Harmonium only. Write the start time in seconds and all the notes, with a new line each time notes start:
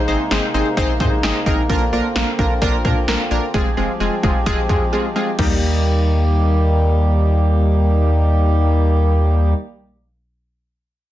Already playing: C3 G#3 A#3 D#4
1.69 D3 C4 F4
3.54 F3 G#3 C4 G4
5.39 D#3 G3 A#3 G4